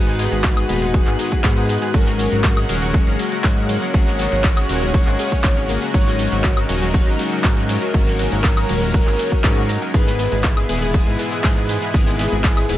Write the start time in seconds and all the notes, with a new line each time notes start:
Already playing: G#1 G#2 D#3 G#3 B3 D#4 F#4 G#4 B4 F#5 F#6
0.07 G#3 G#4, snare, closed hi-hat, cabasa
0.19 G#3 G#4, snare, open hi-hat, ride, cabasa
0.32 G#1 G#3 G#4, closed hi-hat, cabasa
0.44 G#3 G#4, kick, snare, clap, closed hi-hat, ride, cabasa
0.57 G#3 G#4, open hi-hat, cabasa, high woodblock
0.69 D#1 G#2 G#3 B3 D#4 G#4 B4, open hi-hat, ride, cabasa
0.82 G#3 G#4, closed hi-hat, cabasa
0.94 G#3 G#4, kick, closed hi-hat, ride, cabasa
1.07 G#1 G#3 G#4, clap, closed hi-hat, ride, cabasa
1.19 G#3 G#4, open hi-hat, ride, cabasa
1.32 G#3 G#4, kick, closed hi-hat, cabasa
1.44 G#2 G#3 G#4, kick, snare, clap, closed hi-hat, ride, cabasa
1.57 G#3 G#4, closed hi-hat, ride, cabasa
1.69 G#3 G#4, open hi-hat, ride, cabasa
1.82 G#3 G#4, closed hi-hat, cabasa
1.94 G#1 C#3 F#3 G#3 A#3 C#4 F#4 G#4 A#4, kick, closed hi-hat, ride, cabasa
2.06 F#3 F#4, snare, closed hi-hat, cabasa
2.19 F#3 F#4, open hi-hat, ride, cabasa
2.32 G#1 F#3 F#4, closed hi-hat, cabasa
2.44 F#3 F#4, kick, snare, clap, closed hi-hat, ride, cabasa
2.57 F#3 F#4, open hi-hat, cabasa, high woodblock
2.69 D#1 F#3 G#3 C#4 F#4 G#4 A#4, open hi-hat, ride, cabasa
2.82 F#3 F#4, closed hi-hat, ride, cabasa
2.94 F#3 F#4, kick, closed hi-hat, ride, cabasa
3.07 G#1 F#3 F#4, closed hi-hat, cabasa
3.19 F#3 F#4, open hi-hat, ride, cabasa
3.32 F#3 F#4, closed hi-hat, cabasa
3.44 G#2 F#3 F#4 C#5, kick, snare, clap, closed hi-hat, ride, cabasa
3.57 F#3 F#4, closed hi-hat, cabasa
3.69 F#3 F#4, open hi-hat, ride, cabasa
3.82 F#3 F#4, closed hi-hat, ride, cabasa
3.94 G#1 F#3 G#3 C#4 F#4 G#4 A#4, kick, closed hi-hat, ride, cabasa
4.07 F#3 F#4, snare, closed hi-hat, cabasa
4.19 F#3 F#4, snare, open hi-hat, ride, cabasa
4.32 G#1 F#3 F#4, closed hi-hat, cabasa
4.44 F#3 F#4, kick, snare, clap, closed hi-hat, ride, cabasa
4.57 F#3 F#4, open hi-hat, cabasa, high woodblock
4.69 D#1 F#3 G#3 C#4 F#4 G#4 A#4, open hi-hat, ride, cabasa
4.82 F#3 F#4, closed hi-hat, cabasa
4.94 F#3 F#4, kick, closed hi-hat, ride, cabasa
5.07 G#1 F#3 F#4, clap, closed hi-hat, ride, cabasa
5.19 G#4 G#5, open hi-hat, ride, cabasa
5.32 C#4 C#5, kick, closed hi-hat, cabasa
5.44 G#1 F#3 F#4, kick, snare, clap, closed hi-hat, ride, cabasa
5.57 C#4 C#5, closed hi-hat, ride, cabasa
5.69 A#3 A#4, open hi-hat, ride, cabasa
5.82 F#3 F#4, closed hi-hat, cabasa
5.94 G#1 F#3 G#3 A#3 C#4 D#4 F#4 A#4 C#5, kick, closed hi-hat, ride, cabasa
6.07 F#3 F#4, snare, closed hi-hat, cabasa
6.19 F#3 F#4, open hi-hat, ride, cabasa
6.32 G#1 F#3 F#4, closed hi-hat, cabasa
6.44 F#3 F#4, kick, snare, clap, closed hi-hat, ride, cabasa
6.57 F#3 F#4, open hi-hat, cabasa, high woodblock
6.69 D#1 F#3 G#3 C#4 D#4 F#4 A#4, open hi-hat, ride, cabasa
6.82 F#3 F#4, closed hi-hat, ride, cabasa
6.94 F#3 F#4, kick, closed hi-hat, ride, cabasa
7.07 G#1 F#3 F#4, closed hi-hat, cabasa
7.19 F#3 F#4, open hi-hat, ride, cabasa
7.32 F#3 F#4, closed hi-hat, cabasa
7.44 G#2 F#3 F#4 A#4, kick, snare, clap, closed hi-hat, ride, cabasa
7.57 F#3 F#4, closed hi-hat, cabasa
7.69 F#3 F#4, open hi-hat, ride, cabasa
7.82 F#3 F#4, closed hi-hat, ride, cabasa
7.94 G#1 F#3 G#3 C#4 D#4 F#4 A#4, kick, closed hi-hat, ride, cabasa
8.07 F#3 F#4, snare, closed hi-hat, cabasa
8.19 F#3 F#4, snare, open hi-hat, ride, cabasa
8.32 G#1 F#3 F#4, closed hi-hat, cabasa
8.44 F#3 F#4, kick, snare, clap, closed hi-hat, ride, cabasa
8.57 F#3 F#4, open hi-hat, cabasa, high woodblock
8.69 D#1 F#3 G#3 C#4 D#4 F#4 A#4, open hi-hat, ride, cabasa
8.82 F#3 F#4, closed hi-hat, cabasa
8.94 F#3 F#4, kick, closed hi-hat, ride, cabasa
9.07 G#1 F#3 F#4, clap, closed hi-hat, ride, cabasa
9.19 F#3 F#4, open hi-hat, ride, cabasa
9.32 F#3 F#4, kick, closed hi-hat, cabasa
9.44 G#2 F#3 F#4, kick, snare, clap, closed hi-hat, ride, cabasa
9.57 F#3 F#4, closed hi-hat, ride, cabasa
9.69 F#3 F#4, open hi-hat, ride, cabasa
9.82 F#3 F#4, closed hi-hat, cabasa
9.94 G#1 G#2 B2 E3 G#3 B3 E4 G#4 B4, kick, closed hi-hat, ride, cabasa
10.07 G#3 G#4, snare, closed hi-hat, cabasa
10.18 G#3 G#4, open hi-hat, ride, cabasa
10.32 G#1 G#3 G#4, closed hi-hat, cabasa
10.44 G#3 G#4, kick, snare, clap, closed hi-hat, ride, cabasa
10.57 G#3 G#4, open hi-hat, cabasa, high woodblock
10.69 D#1 G#2 G#3 B3 E4 G#4 B4, open hi-hat, ride, cabasa
10.81 G#3 G#4, closed hi-hat, ride, cabasa
10.94 G#3 G#4, kick, closed hi-hat, ride, cabasa
11.07 G#1 G#3 G#4, closed hi-hat, cabasa
11.19 G#3 G#4, open hi-hat, ride, cabasa
11.32 G#3 G#4, closed hi-hat, cabasa
11.44 G#2 G#3 G#4, kick, snare, clap, closed hi-hat, ride, cabasa
11.57 G#3 G#4, closed hi-hat, cabasa
11.69 G#3 G#4, open hi-hat, ride, cabasa
11.82 G#3 G#4, closed hi-hat, ride, cabasa
11.94 G#1 G#2 G#3 B3 E4 G#4 B4, kick, closed hi-hat, ride, cabasa
12.06 G#3 G#4, snare, closed hi-hat, cabasa
12.19 G#3 G#4, snare, open hi-hat, ride, cabasa
12.32 G#1 G#3 G#4, closed hi-hat, cabasa
12.44 G#3 G#4, kick, snare, clap, closed hi-hat, ride, cabasa
12.57 G#3 G#4, open hi-hat, cabasa, high woodblock
12.69 D#1 G#2 G#3 B3 E4 G#4 B4, open hi-hat, ride, cabasa